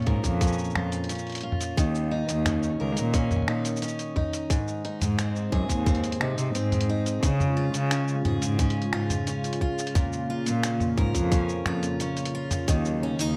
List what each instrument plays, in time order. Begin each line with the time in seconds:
Already playing: steel-string acoustic guitar A#2 C#4 F4
0.02 closed hi-hat
0.06 cello G#2, steel-string acoustic guitar A#4, kick, closed hi-hat
0.24 cello F2, kick, closed hi-hat, cabasa
0.41 steel-string acoustic guitar C#4, kick, closed hi-hat, cabasa
0.47 cabasa
0.53 cabasa
0.58 cabasa
0.64 cabasa
0.70 cabasa
0.75 cello F2, steel-string acoustic guitar F4, finger snap, mid tom
0.92 closed hi-hat, cabasa
1.04 closed hi-hat
1.09 steel-string acoustic guitar C#4, closed hi-hat, cabasa
1.15 closed hi-hat, cabasa
1.27 closed hi-hat
1.30 closed hi-hat
1.32 closed hi-hat
1.35 closed hi-hat
1.38 closed hi-hat
1.41 steel-string acoustic guitar F4, closed hi-hat
1.52 mid tom
1.61 closed hi-hat, cabasa
1.77 cello D#2, steel-string acoustic guitar D#3, kick, closed hi-hat, cabasa
1.95 cabasa
2.11 steel-string acoustic guitar D#4
2.29 cello D#2, closed hi-hat, cabasa
2.46 steel-string acoustic guitar C#4, finger snap, closed hi-hat, mid tom, cabasa
2.63 cabasa
2.80 cello C#2, steel-string acoustic guitar A#4
2.97 cello A#2, closed hi-hat, cabasa
3.14 steel-string acoustic guitar C#4, kick, closed hi-hat, cabasa
3.31 mid tom, cabasa
3.37 mid tom
3.42 mid tom
3.48 cello A#2, steel-string acoustic guitar D#4, finger snap
3.65 closed hi-hat, cabasa
3.76 cabasa
3.82 steel-string acoustic guitar C#4, closed hi-hat, cabasa
3.88 cabasa
3.99 closed hi-hat, cabasa
4.16 steel-string acoustic guitar D#4, kick, mid tom
4.33 closed hi-hat, cabasa
4.50 steel-string acoustic guitar G#2, kick, closed hi-hat, cabasa
4.68 cabasa
4.85 steel-string acoustic guitar D#4, closed hi-hat
5.02 cello G#2, closed hi-hat, mid tom, cabasa
5.19 steel-string acoustic guitar C4, finger snap, closed hi-hat, cabasa
5.36 cabasa
5.52 cello F#2, steel-string acoustic guitar G#4, kick, closed hi-hat
5.69 cello D#2, kick, closed hi-hat, cabasa
5.86 steel-string acoustic guitar C4, kick, closed hi-hat, mid tom, cabasa
5.95 closed hi-hat
6.04 closed hi-hat, cabasa
6.12 closed hi-hat
6.21 cello C3, steel-string acoustic guitar D#4, finger snap
6.38 cello C3, closed hi-hat, cabasa
6.55 cello G#2, steel-string acoustic guitar C4, closed hi-hat, cabasa
6.72 closed hi-hat, mid tom, cabasa
6.81 closed hi-hat
6.89 steel-string acoustic guitar D#4
7.06 closed hi-hat, cabasa
7.23 analog synth pad C#3 G#3 F4, cello C#3, steel-string acoustic guitar C#3, kick, closed hi-hat, cabasa
7.40 mid tom, cabasa
7.57 steel-string acoustic guitar F4
7.74 cello C#3, closed hi-hat, cabasa
7.91 steel-string acoustic guitar C#4, finger snap, closed hi-hat, cabasa
8.08 cabasa
8.25 cello G#2, steel-string acoustic guitar G#4, closed hi-hat, mid tom
8.42 cello G#2, closed hi-hat, cabasa
8.59 steel-string acoustic guitar C#4, kick, closed hi-hat, cabasa
8.70 closed hi-hat
8.82 closed hi-hat
8.93 cello G#2, steel-string acoustic guitar F4, finger snap
9.10 closed hi-hat, mid tom, cabasa
9.27 steel-string acoustic guitar C#4, closed hi-hat, cabasa
9.44 closed hi-hat, cabasa
9.53 closed hi-hat
9.61 steel-string acoustic guitar F4, kick
9.78 cabasa
9.87 closed hi-hat
9.95 steel-string acoustic guitar A#2, analog synth pad A#3, kick, closed hi-hat, mid tom, cabasa
10.13 cabasa
10.30 steel-string acoustic guitar F4
10.46 cello A#2, closed hi-hat, cabasa
10.63 steel-string acoustic guitar C#4, finger snap, closed hi-hat, cabasa
10.80 mid tom, cabasa
10.98 cello G#2, steel-string acoustic guitar A#4, kick, closed hi-hat
11.15 cello F2, kick, closed hi-hat, cabasa
11.32 steel-string acoustic guitar C#4, kick, closed hi-hat, cabasa
11.49 cabasa
11.66 cello F2, steel-string acoustic guitar F4, finger snap, mid tom
11.83 closed hi-hat, cabasa
12.00 steel-string acoustic guitar C#4, closed hi-hat, cabasa
12.17 closed hi-hat, cabasa
12.25 closed hi-hat
12.35 steel-string acoustic guitar F4
12.51 closed hi-hat, mid tom, cabasa
12.68 cello D#2, steel-string acoustic guitar D#3, analog synth pad F#3 D#4, kick, closed hi-hat, cabasa
12.85 cabasa
13.03 steel-string acoustic guitar C#4
13.19 cello D#2, steel-string acoustic guitar D#4, closed hi-hat, cabasa